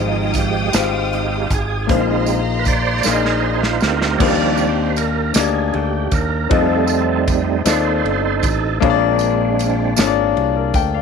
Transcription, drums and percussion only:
0.34 kick medium
0.34 closed hi-hat medium
0.34 tambourine medium
0.73 snare loud
0.73 closed hi-hat medium
0.73 tambourine loud
1.13 closed hi-hat soft
1.51 kick medium
1.51 closed hi-hat medium
1.51 tambourine soft
1.89 kick loud
1.89 closed hi-hat medium
2.26 closed hi-hat soft
2.26 tambourine medium
2.65 kick medium
2.65 closed hi-hat medium
2.65 tambourine medium
3.03 snare medium
3.03 tambourine loud
3.25 snare soft
3.63 snare medium
3.80 snare medium
3.80 tambourine soft
4.02 snare medium
4.20 kick loud
4.20 crash loud
4.58 ride soft
4.58 tambourine medium
4.96 ride medium
4.96 tambourine medium
5.34 snare loud
5.34 ride medium
5.34 tambourine loud
5.74 ride soft
6.11 kick medium
6.11 ride medium
6.11 tambourine medium
6.51 kick loud
6.51 ride medium
6.87 ride soft
6.87 tambourine medium
7.28 kick medium
7.28 ride medium
7.28 tambourine medium
7.66 snare loud
7.66 ride medium
7.66 tambourine loud
8.06 ride soft
8.43 kick medium
8.43 ride medium
8.43 tambourine medium
8.82 kick loud
8.82 ride medium
9.19 ride soft
9.19 tambourine medium
9.59 ride medium
9.59 tambourine soft
9.96 snare loud
9.96 ride medium
9.96 tambourine loud
10.37 ride soft
10.74 kick loud
10.74 ride medium
10.74 tambourine soft

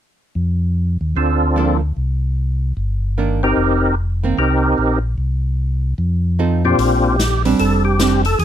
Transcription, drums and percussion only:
6.79 open hi-hat soft
7.19 snare medium
7.19 closed hi-hat soft
7.45 open hi-hat soft
7.59 open hi-hat soft
7.99 snare medium
7.99 closed hi-hat soft
8.25 open hi-hat soft
8.39 open hi-hat soft

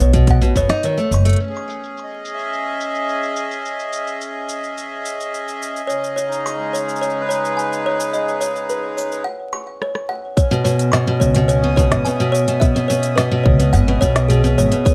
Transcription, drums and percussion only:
0.00 shaker medium
0.13 kick medium
0.13 closed hi-hat medium
0.13 shaker soft
0.27 kick medium
0.27 closed hi-hat soft
0.27 shaker soft
0.42 shaker soft
0.56 kick medium
0.56 shaker medium
0.70 snare medium
0.70 closed hi-hat medium
0.70 shaker soft
0.83 closed hi-hat soft
0.83 shaker soft
0.98 shaker soft
1.12 shaker medium
1.26 closed hi-hat medium
1.26 shaker soft
1.29 closed hi-hat soft
1.33 closed hi-hat soft
1.36 closed hi-hat soft
1.40 closed hi-hat soft
1.40 shaker soft
1.44 closed hi-hat soft
1.48 closed hi-hat soft
1.52 closed hi-hat soft
1.56 shaker soft
1.70 shaker medium
1.84 shaker soft
1.97 shaker soft
2.25 shaker medium
2.39 shaker soft
2.53 shaker soft
2.81 shaker medium
2.95 shaker soft
3.09 shaker soft
3.23 shaker soft
3.36 shaker medium
3.51 shaker soft
3.65 shaker soft
3.80 shaker soft
3.93 shaker medium
4.07 shaker soft
4.21 shaker soft
4.49 shaker medium
4.64 shaker soft
4.78 shaker soft
5.06 shaker medium
5.21 shaker soft
5.34 shaker soft
5.48 shaker soft
5.62 shaker medium
5.76 shaker soft
5.90 shaker soft
6.04 shaker soft
6.18 shaker medium
6.32 shaker soft
6.47 shaker soft
6.75 shaker medium
6.89 shaker soft
6.96 shaker soft
7.03 shaker soft
7.10 shaker soft
7.31 shaker medium
7.45 shaker soft
7.59 shaker soft
7.73 shaker soft
8.00 shaker medium
8.14 shaker soft
8.28 shaker soft
8.41 shaker medium
8.56 shaker soft
8.70 shaker soft
8.98 shaker medium
9.12 shaker soft
9.82 cross-stick medium
9.95 cross-stick medium
10.37 kick loud
10.37 closed hi-hat soft
10.37 shaker soft
10.52 shaker soft
10.66 shaker medium
10.79 closed hi-hat medium
10.79 shaker soft
10.93 snare medium
10.93 closed hi-hat soft
10.93 shaker soft
11.21 kick medium
11.21 shaker medium
11.35 closed hi-hat medium
11.35 shaker soft
11.49 closed hi-hat soft
11.49 shaker soft
11.77 kick loud
11.77 shaker medium
11.92 snare medium
11.92 closed hi-hat medium
11.92 shaker soft
12.05 closed hi-hat soft
12.05 shaker soft
12.20 shaker soft
12.35 shaker medium
12.48 closed hi-hat medium
12.48 shaker soft
12.61 kick loud
12.61 closed hi-hat soft
12.61 shaker soft
12.76 shaker soft
12.90 shaker medium
13.03 closed hi-hat medium
13.03 shaker soft
13.18 snare medium
13.18 closed hi-hat soft
13.18 shaker soft
13.46 kick loud
13.60 closed hi-hat medium
13.60 shaker soft
13.73 closed hi-hat soft
13.73 shaker soft
14.02 kick medium
14.02 shaker medium
14.16 snare medium
14.16 closed hi-hat medium
14.16 shaker soft
14.30 closed hi-hat soft
14.30 shaker soft
14.45 shaker soft
14.59 shaker medium
14.72 closed hi-hat medium
14.72 shaker soft
14.86 kick loud
14.86 closed hi-hat soft
14.86 shaker soft

